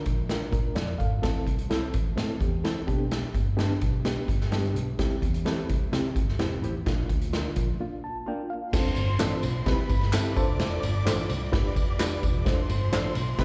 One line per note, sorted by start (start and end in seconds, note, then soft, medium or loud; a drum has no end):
0.06 0.41 A#1 medium
0.06 kick medium
0.06 closed hi-hat medium
0.29 0.52 D4 medium
0.29 0.53 F4 medium
0.29 0.51 A#4 medium
0.29 snare medium
0.29 closed hi-hat medium
0.52 0.70 A#2 medium
0.52 0.75 D4 soft
0.52 0.75 A#4 medium
0.52 kick medium
0.52 closed hi-hat medium
0.75 0.93 F2 medium
0.75 0.98 F4 soft
0.75 0.98 D5 medium
0.75 snare loud
0.75 closed hi-hat medium
0.98 1.17 G#1 medium
0.98 1.22 A4 medium
0.98 1.44 F5 medium
0.98 kick medium
0.98 closed hi-hat soft
1.22 1.40 A1 loud
1.22 1.48 C4 medium
1.22 1.48 E4 medium
1.22 1.48 A4 medium
1.22 kick loud
1.22 snare loud
1.22 closed hi-hat medium
1.46 1.81 C2 medium
1.46 kick medium
1.46 closed hi-hat medium
1.59 closed hi-hat medium
1.69 1.95 C4 medium
1.69 1.95 E4 medium
1.69 1.84 E4 medium
1.69 1.95 A4 medium
1.69 1.84 A4 medium
1.69 1.85 C5 medium
1.69 snare loud
1.69 closed hi-hat medium
1.94 2.11 A1 loud
1.94 kick medium
1.94 closed hi-hat medium
2.16 2.35 A2 medium
2.16 2.40 C4 medium
2.16 2.40 E4 medium
2.16 2.41 A4 medium
2.16 snare loud
2.16 closed hi-hat loud
2.40 2.75 E2 medium
2.40 2.63 B3 medium
2.40 2.63 G4 medium
2.40 kick medium
2.40 closed hi-hat medium
2.64 3.09 C4 soft
2.64 2.78 E4 medium
2.64 3.09 A4 medium
2.64 2.78 A4 medium
2.64 2.79 C5 medium
2.64 snare loud
2.64 closed hi-hat medium
2.87 3.22 B1 medium
2.87 3.44 B3 medium
2.87 3.44 D4 medium
2.87 2.98 D4 medium
2.87 3.44 G4 medium
2.87 2.99 G4 medium
2.87 3.00 B4 medium
2.87 kick medium
2.87 closed hi-hat medium
3.11 snare loud
3.11 closed hi-hat medium
3.35 3.69 G1 medium
3.35 kick medium
3.35 closed hi-hat medium
3.57 3.82 B3 medium
3.57 3.82 D4 medium
3.57 3.72 D4 medium
3.57 3.83 G4 medium
3.57 3.72 G4 medium
3.57 3.73 B4 medium
3.57 snare loud
3.57 closed hi-hat medium
3.81 4.16 B1 medium
3.81 kick medium
3.81 closed hi-hat medium
4.04 4.30 B3 medium
4.04 4.30 D4 medium
4.04 4.30 G4 medium
4.04 snare loud
4.04 closed hi-hat medium
4.28 4.45 G1 loud
4.28 kick medium
4.28 closed hi-hat medium
4.41 snare soft
4.51 4.69 G2 medium
4.51 4.77 B3 medium
4.51 4.77 D4 medium
4.51 4.66 D4 medium
4.51 4.77 G4 medium
4.51 4.66 G4 medium
4.51 4.66 B4 medium
4.51 snare loud
4.51 closed hi-hat medium
4.65 closed hi-hat soft
4.75 4.92 B1 medium
4.75 closed hi-hat medium
4.99 5.16 C2 loud
4.99 5.24 C4 medium
4.99 5.24 E4 medium
4.99 5.24 G4 loud
4.99 kick loud
4.99 snare loud
4.99 closed hi-hat medium
5.22 5.56 E2 medium
5.22 kick medium
5.22 closed hi-hat medium
5.34 closed hi-hat medium
5.45 5.71 C4 medium
5.45 5.59 E4 medium
5.45 5.71 E4 medium
5.45 5.60 G4 medium
5.45 5.71 A4 medium
5.45 5.60 C5 medium
5.45 snare loud
5.45 closed hi-hat medium
5.69 5.87 C2 medium
5.69 kick medium
5.69 closed hi-hat medium
5.92 6.17 C3 medium
5.92 6.18 C4 medium
5.92 6.18 E4 medium
5.92 6.18 G4 medium
5.92 snare loud
5.92 closed hi-hat loud
6.16 6.33 G1 medium
6.16 kick loud
6.16 closed hi-hat medium
6.29 snare soft
6.38 6.56 E1 medium
6.38 6.64 C4 medium
6.38 6.53 E4 medium
6.38 6.65 E4 medium
6.38 6.64 G4 medium
6.38 6.54 G4 medium
6.38 6.54 C5 medium
6.38 snare loud
6.38 closed hi-hat medium
6.62 6.80 A1 medium
6.62 6.73 E4 medium
6.62 6.74 G4 medium
6.62 6.74 C5 medium
6.62 closed hi-hat soft
6.86 7.03 A#1 loud
6.86 7.12 A#3 medium
6.86 7.11 D4 medium
6.86 7.11 F4 medium
6.86 kick loud
6.86 snare loud
6.86 closed hi-hat medium
7.09 7.44 D2 medium
7.09 kick medium
7.09 closed hi-hat medium
7.22 closed hi-hat medium
7.33 7.58 A#3 medium
7.33 7.58 D4 medium
7.33 7.47 F4 medium
7.33 7.58 F4 medium
7.33 7.47 A#4 medium
7.33 7.47 D5 loud
7.33 snare loud
7.33 closed hi-hat medium
7.56 7.74 A#1 medium
7.56 kick medium
7.56 closed hi-hat medium
7.80 8.05 A#3 medium
7.80 8.05 D4 medium
7.80 8.05 F4 medium
8.04 8.25 A5 medium
8.26 8.52 A#3 medium
8.26 8.52 D4 medium
8.26 8.40 F4 medium
8.26 8.52 F4 medium
8.26 8.41 A#4 medium
8.26 8.41 D5 medium
8.26 8.49 G5 medium
8.50 8.72 F5 medium
8.73 8.90 F1 loud
8.73 8.99 C4 medium
8.73 8.99 D4 medium
8.73 8.99 F4 medium
8.73 8.99 A4 medium
8.73 9.65 C5 medium
8.73 9.64 C6 medium
8.73 kick loud
8.73 snare loud
8.73 crash loud
8.73 tambourine medium
8.96 9.14 G1 medium
8.96 ride medium
8.96 tambourine soft
9.19 9.37 A1 loud
9.19 9.44 C4 medium
9.19 9.45 D4 medium
9.19 9.45 F4 medium
9.19 9.34 F4 medium
9.19 9.45 A4 loud
9.19 9.34 A4 medium
9.19 9.35 D5 loud
9.19 snare loud
9.19 clap medium
9.19 ride medium
9.19 tambourine loud
9.43 9.60 B1 medium
9.43 ride medium
9.43 tambourine medium
9.66 9.75 C2 loud
9.66 9.91 C4 medium
9.66 9.91 E4 medium
9.66 9.92 G4 medium
9.66 10.35 B4 medium
9.66 9.92 B4 medium
9.66 10.35 B5 medium
9.66 kick loud
9.66 snare loud
9.66 ride medium
9.78 muted picked electric bass stroke medium
9.89 10.15 G1 loud
9.89 kick loud
9.89 ride medium
9.89 tambourine soft
10.01 snare soft
10.01 ride soft
10.13 10.37 C4 medium
10.13 10.37 E4 medium
10.13 10.27 G4 medium
10.13 10.37 G4 medium
10.13 10.35 A4 medium
10.13 10.27 B4 medium
10.13 10.28 E5 medium
10.13 snare loud
10.13 clap loud
10.13 ride medium
10.13 tambourine loud
10.26 ride soft
10.36 10.45 F1 loud
10.36 10.92 D4 medium
10.36 10.92 F4 medium
10.36 10.92 A4 medium
10.36 10.93 C5 loud
10.36 11.51 D5 medium
10.36 11.50 D6 medium
10.36 kick loud
10.36 ride soft
10.36 tambourine medium
10.48 10.57 E1 medium
10.59 10.77 F1 loud
10.59 snare loud
10.59 ride medium
10.59 tambourine soft
10.83 11.00 G1 medium
10.83 ride medium
10.83 tambourine medium
11.05 11.24 A1 medium
11.05 11.31 D4 medium
11.05 11.31 F4 medium
11.05 11.20 F4 medium
11.05 11.31 A4 medium
11.05 11.21 A4 loud
11.05 11.31 C5 loud
11.05 11.21 D5 medium
11.05 snare loud
11.05 clap loud
11.05 ride medium
11.05 tambourine medium
11.30 11.47 C2 medium
11.30 ride medium
11.30 tambourine medium
11.52 11.61 G1 medium
11.52 11.77 D4 medium
11.52 11.78 F4 medium
11.52 11.78 G4 medium
11.52 11.78 B4 medium
11.52 12.44 D5 medium
11.52 12.44 D6 medium
11.52 kick loud
11.52 snare loud
11.52 ride medium
11.65 muted picked electric bass stroke soft
11.76 12.02 F1 loud
11.76 kick loud
11.76 ride medium
11.76 tambourine soft
11.99 12.24 D4 medium
11.99 12.24 F4 medium
11.99 12.13 F4 medium
11.99 12.24 G4 medium
11.99 12.24 B4 medium
11.99 12.14 B4 medium
11.99 12.14 D5 medium
11.99 snare loud
11.99 clap loud
11.99 ride medium
11.99 tambourine loud
12.23 12.31 E1 loud
12.23 kick medium
12.23 ride soft
12.23 tambourine medium
12.34 12.43 E1 medium
12.45 12.63 F1 loud
12.45 12.70 D4 medium
12.45 12.70 F4 medium
12.45 12.71 A4 medium
12.45 12.71 C5 medium
12.45 13.37 C5 medium
12.45 13.37 C6 medium
12.45 kick loud
12.45 snare loud
12.45 ride medium
12.45 tambourine medium
12.69 12.86 G1 loud
12.69 ride medium
12.69 tambourine medium
12.92 13.09 A1 loud
12.92 13.17 D4 medium
12.92 13.17 F4 medium
12.92 13.06 F4 medium
12.92 13.17 A4 medium
12.92 13.07 A4 loud
12.92 13.17 C5 loud
12.92 13.07 D5 loud
12.92 snare loud
12.92 clap loud
12.92 ride medium
12.92 tambourine medium
13.15 13.33 B1 loud
13.15 ride medium
13.15 tambourine medium
13.38 13.45 C2 loud
13.38 13.45 C4 medium
13.38 13.45 E4 medium
13.38 13.45 G4 medium
13.38 13.45 B4 loud
13.38 13.45 B4 medium
13.38 13.45 B5 medium
13.38 kick loud
13.38 snare loud
13.38 ride medium